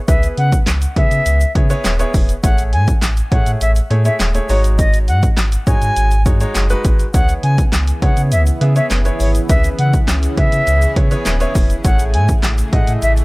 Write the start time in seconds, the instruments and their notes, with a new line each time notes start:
0.08 sub bass C#2, grand piano B3 E4 G#4 B4, flute E5, kick, closed hi-hat, shaker
0.23 closed hi-hat, shaker
0.37 sub bass C#3, flute F#5, closed hi-hat
0.52 kick, closed hi-hat, shaker
0.66 sub bass C#2, snare, clap, closed hi-hat, shaker
0.82 closed hi-hat, shaker
0.96 sub bass C#3, grand piano B3 E4 G#4 E5, flute E5, kick, closed hi-hat
1.11 sub bass C#3, closed hi-hat, shaker
1.26 sub bass C#2, closed hi-hat, shaker
1.40 closed hi-hat, shaker
1.55 sub bass C#3, grand piano B3 E4 G#4 C#5, kick, closed hi-hat
1.70 grand piano B3 E4 G#4 C#5, closed hi-hat, shaker
1.84 sub bass D#1, snare, clap, closed hi-hat, shaker
1.99 grand piano B3 E4 G#4 C#5, closed hi-hat, shaker
2.14 sub bass E1, kick, open hi-hat, shaker
2.29 closed hi-hat, shaker
2.43 sub bass A1, grand piano A3 E4 G#4 C#5, flute F#5, kick, closed hi-hat, shaker
2.58 closed hi-hat, shaker
2.73 sub bass A2, flute G#5, closed hi-hat
2.88 kick, closed hi-hat, shaker
3.02 sub bass A1, snare, clap, closed hi-hat, shaker
3.17 closed hi-hat, shaker
3.31 sub bass A2, grand piano A3 E4 G#4 C#5, flute F#5, kick, closed hi-hat
3.46 sub bass A2, closed hi-hat, shaker
3.61 sub bass A1, flute E5, closed hi-hat, shaker
3.76 closed hi-hat, shaker
3.90 sub bass A2, grand piano A3 E4 G#4 C#5, closed hi-hat
4.05 grand piano A3 E4 G#4 C#5, flute E5, closed hi-hat, shaker
4.20 sub bass D#1, snare, clap, closed hi-hat, shaker
4.34 grand piano A3 E4 G#4 C#5, closed hi-hat, shaker
4.49 sub bass G#1, grand piano G#3 D#4 F#4 C#5, flute C#5, open hi-hat, shaker
4.64 closed hi-hat, shaker
4.79 flute D#5, kick, closed hi-hat, shaker
4.93 closed hi-hat, shaker
5.08 sub bass G#2, flute F#5, closed hi-hat, shaker
5.23 kick, closed hi-hat, shaker
5.37 sub bass G#1, snare, clap, closed hi-hat, shaker
5.52 closed hi-hat, shaker
5.67 sub bass G#2, grand piano G#3 D#4 F#4 C#5, flute G#5, kick, closed hi-hat, shaker
5.82 sub bass G#2, closed hi-hat, shaker
5.96 sub bass G#1, closed hi-hat, shaker
6.11 closed hi-hat, shaker
6.26 sub bass G#2, grand piano G#3 D#4 F#4 C#5, kick, closed hi-hat, shaker
6.40 grand piano G#3 D#4 F#4 C#5, closed hi-hat, shaker
6.55 sub bass F#1, snare, clap, closed hi-hat, shaker
6.70 grand piano G#3 D#4 F#4 B4, closed hi-hat, shaker
6.84 sub bass G#1, kick, closed hi-hat, shaker
6.99 closed hi-hat, shaker
7.14 sub bass C#2, analog synth pad C#3 E3 E4 G#4, grand piano B3 E4 G#4 C#5, flute F#5, kick, closed hi-hat, shaker
7.29 closed hi-hat, shaker
7.43 sub bass C#3, flute G#5, closed hi-hat
7.58 kick, closed hi-hat, shaker
7.72 sub bass C#2, snare, clap, closed hi-hat, shaker
7.87 closed hi-hat, shaker
8.02 sub bass C#3, grand piano B3 E4 G#4 C#5, flute F#5, kick, closed hi-hat
8.17 sub bass C#3, closed hi-hat, shaker
8.32 sub bass C#2, flute E5, closed hi-hat, shaker
8.46 closed hi-hat, shaker
8.61 sub bass C#3, grand piano B3 E4 G#4 E5, closed hi-hat
8.76 grand piano B3 E4 G#4 C#5, flute E5, closed hi-hat, shaker
8.90 sub bass F#1, snare, clap, closed hi-hat, shaker
9.05 grand piano B3 E4 G#4 C#5, closed hi-hat, shaker
9.20 sub bass G#1, flute C#5, open hi-hat, shaker
9.35 closed hi-hat, shaker
9.49 sub bass C#2, grand piano B3 E4 G#4 B4, analog synth pad C#4, flute E5, kick, closed hi-hat, shaker
9.64 closed hi-hat, shaker
9.79 sub bass C#3, flute F#5, closed hi-hat
9.93 kick, closed hi-hat, shaker
10.08 sub bass C#2, snare, clap, closed hi-hat, shaker
10.23 closed hi-hat, shaker
10.37 sub bass C#3, grand piano B3 E4 G#4 E5, flute E5, kick, closed hi-hat
10.52 sub bass C#3, closed hi-hat, shaker
10.67 sub bass C#2, closed hi-hat, shaker
10.82 closed hi-hat, shaker
10.96 sub bass C#3, grand piano B3 E4 G#4 C#5, kick, closed hi-hat
11.11 grand piano B3 E4 G#4 C#5, closed hi-hat, shaker
11.25 sub bass D#1, snare, clap, closed hi-hat, shaker
11.40 grand piano B3 E4 G#4 C#5, closed hi-hat, shaker
11.55 sub bass E1, kick, open hi-hat, shaker
11.70 closed hi-hat, shaker
11.84 sub bass A1, grand piano A3 E4 G#4 C#5, analog synth pad A3, flute F#5, kick, closed hi-hat, shaker
11.99 closed hi-hat, shaker
12.14 sub bass A2, flute G#5, closed hi-hat
12.29 kick, closed hi-hat, shaker
12.43 sub bass A1, snare, clap, closed hi-hat, shaker
12.58 closed hi-hat, shaker
12.73 sub bass A2, grand piano A3 E4 G#4 D#5, flute F#5, kick, closed hi-hat
12.87 sub bass A2, closed hi-hat, shaker
13.02 sub bass A1, flute E5, closed hi-hat, shaker
13.17 closed hi-hat, shaker